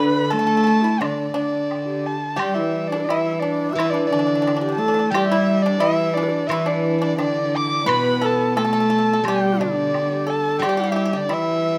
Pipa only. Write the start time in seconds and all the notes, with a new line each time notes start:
0.00 B4
0.31 A4
0.39 A4
0.47 A4
0.57 A4
0.64 A4
0.84 E4
1.01 D4
1.34 D4
2.36 G4
2.92 D4
3.10 E4
3.42 D4
3.80 E4
3.94 D4
4.13 D4
4.19 D4
4.27 D4
4.35 D4
4.42 D4
4.47 D4
4.57 D4
4.61 D4
4.69 D4
4.78 D4
4.88 D4
4.94 D4
4.99 D4
5.15 G4
5.32 E4
5.66 D4
5.80 E4
6.17 D4
6.51 E4
6.66 D4
7.02 D4
7.18 D4
7.86 B4
8.21 A4
8.57 A4
8.65 A4
8.73 A4
8.80 A4
8.90 A4
8.98 A4
9.13 A4
9.28 G4
9.61 D4
10.27 A4
10.63 G4
10.69 G4
10.77 G4
10.84 G4
10.92 G4
10.96 G4
11.05 G4
11.13 G4
11.29 E4